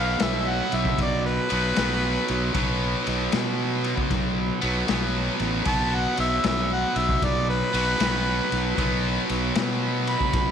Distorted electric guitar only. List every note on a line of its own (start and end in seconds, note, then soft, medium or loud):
0.00 1.52 B2 medium
0.00 1.50 F#3 medium
0.00 1.49 B3 loud
1.49 1.75 B2 medium
1.49 1.77 F#3 medium
1.49 1.78 B3 medium
1.75 2.53 B2 medium
1.75 2.54 F#3 medium
1.75 2.56 B3 medium
2.53 4.64 B2 medium
2.53 4.63 F#3 medium
2.53 4.61 B3 loud
4.61 4.88 B2 medium
4.61 4.89 F#3 medium
4.61 4.90 B3 medium
4.88 5.65 B2 medium
4.88 5.67 F#3 medium
4.88 5.69 B3 medium
5.66 7.71 B2 medium
5.66 7.74 F#3 medium
5.66 7.72 B3 loud
7.73 7.97 B2 medium
7.73 8.00 F#3 medium
7.73 8.01 B3 medium
7.99 8.75 B2 medium
7.99 8.77 F#3 medium
7.99 8.78 B3 medium
8.76 10.51 B2 medium
8.76 10.51 F#3 medium
8.76 10.51 B3 loud